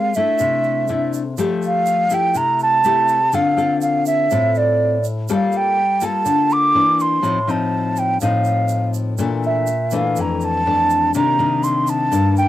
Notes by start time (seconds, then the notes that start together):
Already playing: G#3 C4 G4 A#4 F5
0.14 A3 D4 E4 E5, shaker
0.39 C3, shaker
0.63 shaker
0.88 A3 D4 E4, shaker
1.13 shaker
1.37 F3 A3 G4, shaker
1.62 F5, shaker
1.86 shaker
2.10 A3 E4 G4, shaker
2.14 G5
2.34 C3 A#5, shaker
2.59 A5, shaker
2.84 A3 E4 G4, shaker
3.08 shaker
3.32 D3 C4 F4 A4 F5, shaker
3.57 C4 F4 A4, shaker
3.82 F5, shaker
4.06 E5, shaker
4.30 A2 C4 F4 A4, shaker
4.55 D5, shaker
5.04 shaker
5.28 G3 A#3 F4 A4, shaker
5.34 F5
5.52 shaker
5.57 G5
6.00 A#3 F4 A4, shaker
6.05 A5
6.25 D3, shaker
6.50 D6, shaker
6.74 E3 A#3 D4
7.00 C6, shaker
7.22 A2 F3 C4 D#4, shaker
7.47 F3 C4 D#4 A5, shaker
7.96 G5, shaker
8.20 A2 F3 C4 D#4 F5, shaker
8.44 shaker
8.68 shaker
8.94 shaker
9.18 A#2 E3 A3 D4, shaker
9.43 E5, shaker
9.67 shaker
9.91 E3 A3 D4, shaker
9.96 F5
10.16 F2, shaker
10.21 A#5
10.41 A5, shaker
10.66 E3 A3 D4
10.90 shaker
11.14 C3 D#3 A#3 D4 A#5, shaker
11.39 D#3 A#3 D4, shaker
11.64 C6, shaker
11.87 A5, shaker
12.11 G2 D#3 A#3 D4, shaker
12.37 G5, shaker